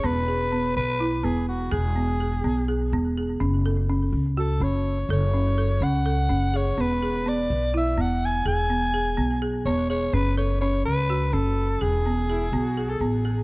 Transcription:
X:1
M:7/8
L:1/16
Q:1/4=125
K:E
V:1 name="Soprano saxophone"
B6 B4 G2 F2 | G8 z6 | z8 A2 c4 | c6 f6 c2 |
B4 =d4 e2 f2 g2 | g8 z2 c2 c2 | B2 c2 c2 B4 A4 | G8- G2 z4 |]
V:2 name="Viola"
z12 z2 | z12 z2 | z12 z2 | z12 z2 |
z12 z2 | z12 z2 | z12 z2 | z4 E2 F3 A G4 |]
V:3 name="Marimba"
B,2 G2 B,4 E2 B,4 | G2 B,2 G2 B,2 G2 B,2 G2 | C2 A2 C4 F2 C4 | A2 C2 A2 C2 A2 C2 G2 |
B,2 G2 B,4 E2 B,4 | G2 B,2 G2 B,2 G2 B,2 G2 | C2 A2 C4 F2 C4 | G2 B,2 G2 B,2 G2 B,2 G2 |]
V:4 name="Upright bass" clef=bass
E,,,6 B,,,4 E,,,4 | E,,,6 B,,,4 E,,,4 | F,,,6 C,,4 F,,,4 | F,,,6 C,,4 F,,,4 |
E,,,6 B,,,4 E,,,4 | E,,,6 B,,,4 E,,,4 | F,,,6 C,,4 F,,,4 | E,,,6 B,,,4 A,,,4 |]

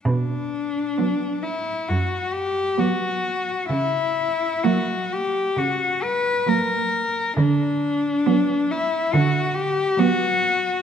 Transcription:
X:1
M:4/4
L:1/8
Q:1/4=66
K:Bm
V:1 name="Cello"
D3 E F G F2 | E2 F G F B ^A2 | D3 E F G F2 |]
V:2 name="Cello"
z2 B,2 z2 B,2 | z2 ^A,2 z2 A,2 | z2 B,2 z2 B,2 |]
V:3 name="Cello" clef=bass
z2 F,2 z2 F,2 | z2 F,2 z2 F,2 | z2 F,2 z2 F,2 |]
V:4 name="Cello" clef=bass
B,,2 z2 F,,2 z2 | C,2 z2 C,2 z2 | D,2 z2 D,2 z2 |]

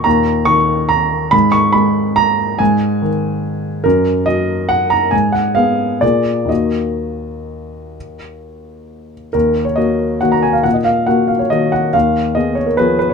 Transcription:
X:1
M:3/4
L:1/16
Q:1/4=139
K:Ebm
V:1 name="Grand piano"
b4 d'4 b4 | c'2 d'2 c'4 b4 | a4 z8 | B4 e4 g2 b2 |
a2 g2 f4 =d4 | e12- | e8- e2 z2 | B3 d e4 g b a f |
g e f2 g2 f d e2 g2 | f4 e2 d B c2 c d |]
V:2 name="Grand piano" clef=bass
[E,,B,,]4 E,8 | A,,4 A,8 | A,,4 E,8 | G,,4 G,8 |
A,,4 [CA]4 [B,,B,A]4 | [E,,E,B,G]12- | [E,,E,B,G]12 | E,,4 [B,G]4 [E,B,G]4 |
B,,4 [B,G]4 [E,B,G]4 | E,,4 [CA]4 [F,CA]4 |]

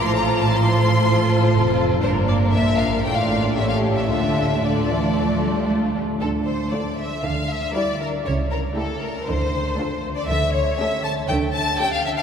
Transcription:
X:1
M:4/4
L:1/16
Q:1/4=119
K:Dm
V:1 name="Violin section"
c' b2 a c'8- c'2 z2 | c2 d2 e2 f2 g f2 d e f2 e | e4 d8 z4 | A2 c2 d2 e2 f2 e2 d2 B2 |
^c2 B2 A2 B2 =c6 z d | e2 ^c2 e2 a2 g2 a2 g f e f |]
V:2 name="Violin section"
[Ac]4 [Ac]12 | B8 [Fd]4 [GA]4 | [FA]4 [FA]8- [FA]2 z2 | z4 [FA]4 z4 [GB]4 |
z4 [GA]4 z4 [FA]4 | z4 [GA]4 z4 [GA]4 |]
V:3 name="Viola section"
[F,F]4 [F,F]12 | [B,D]8 [A,D]4 [A,^C]4 | [A,D]4 [A,D]8- [A,D]2 z2 | z4 [A,D]4 z4 [G,E]4 |
z4 [A,E]4 z4 [A,D]4 | z4 [A,^C]4 z4 [A,C]4 |]
V:4 name="Cello section" clef=bass
A,,12 F,,4 | G,,4 B,,4 A,,4 A,,4 | D,4 D,2 E,2 F,2 G,2 A,2 G,2 | D,4 z4 D,4 z4 |
^C,4 z4 D,4 z4 | D,4 z4 D,4 z4 |]
V:5 name="Double bass section" clef=bass
A,,,12 F,,,4 | G,,,4 B,,,4 A,,,4 A,,,4 | D,,12- D,,2 z2 | D,,4 z4 D,,4 z4 |
^C,,4 z4 D,,4 z4 | D,,4 z4 D,,4 z4 |]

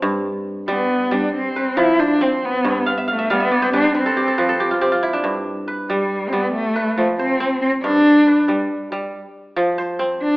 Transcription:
X:1
M:12/8
L:1/16
Q:3/8=92
K:Flyd
V:1 name="Kora"
z12 z2 B4 c6 | z2 f e f e f e d c B c B A G A B A G F G F E D- | D z3 B6 z4 B4 c6 | z4 B6 z8 c6 |]
V:2 name="Kora" clef=bass
G,,4 z2 G,4 G,2 z4 F,4 C4 | G,,4 z2 G,4 G,2 z4 F,4 C4 | G,,4 z2 G,4 G,2 z4 F,4 C4 | G,,4 z2 G,4 G,2 z4 F,4 C4 |]
V:3 name="Cello"
z6 B,4 D2 C4 E2 D2 C2 B,2- | B,2 z2 A,2 B,4 D2 C8 z4 | z6 G,3- G,/2 C/2 B,2 A,4 A,2 C4 C2 | D6 z16 D2 |]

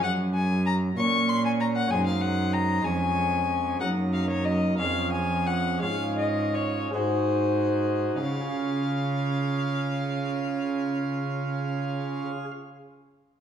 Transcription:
X:1
M:6/8
L:1/16
Q:3/8=56
K:Db
V:1 name="Violin"
g2 a2 b2 d'2 c' a b g | a f g2 b2 a6 | g2 f d e2 f2 a2 g2 | f2 e2 d2 c6 |
f12- | f12 |]
V:2 name="Pipe organ"
G,,6 [B,,B,Dd]6 | [G,,A,Ec]6 [F,,A,Dd]6 | [G,,B,EB]6 [F,,DFA]6 | [A,,A,DFA]6 [A,,A,EGA]6 |
[D,DFAf]12- | [D,DFAf]12 |]
V:3 name="Cello" clef=bass
G,,6 B,,6 | G,,6 F,,6 | G,,6 F,,6 | A,,6 A,,6 |
D,12- | D,12 |]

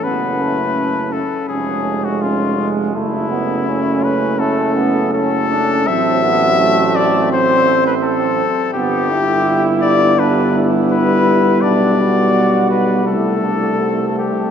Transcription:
X:1
M:4/4
L:1/16
Q:1/4=83
K:F#m
V:1 name="Cornet"
B6 A2 G3 F ^E3 z | E6 B2 A4 A4 | [K:G] e6 d2 c3 B A4 | G6 d2 B3 z B4 |
d6 B2 A6 G2 |]
V:2 name="Flugelhorn"
B,2 A,4 z2 C4 C2 G,2 | A,2 B,2 C4 A,2 B,2 C2 D2 | [K:G] C2 B,2 A,4 C6 z2 | B,2 E6 D2 E6 |
D2 F6 E2 D2 C4 |]
V:3 name="French horn"
C12- C2 z2 | C16 | [K:G] C16- | C2 z2 B,12- |
B,8 A,8 |]
V:4 name="Trombone" clef=bass
A,6 z2 G,8 | A,16 | [K:G] F,12- F,2 z2 | G,16- |
G,16 |]
V:5 name="Tuba" clef=bass
F,,,6 z2 ^E,,,8 | F,,,16 | [K:G] A,,,12- A,,,2 z2 | G,,,16 |
B,,,8 C,,8 |]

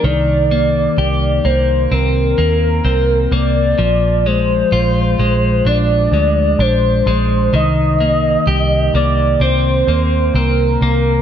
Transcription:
X:1
M:4/4
L:1/8
Q:1/4=64
K:Cm
V:1 name="Soft synth lead"
d3 c B3 d- | d c3 d2 c2 | e3 d c2 B2 |]
V:2 name="Clean electric guitar"
E, B, G B, C B, C B, | F, A, F A, D A, D A, | E, B, G B, C B, C B, |]
V:3 name="Picked electric bass" clef=bass
C,,2 C,, C,, C,, E,, C,, C,, | B,,,2 B,,, B,,, B,,, D,, B,,, B,,, | C,,2 C,, C,, C,, E,, C,, C,, |]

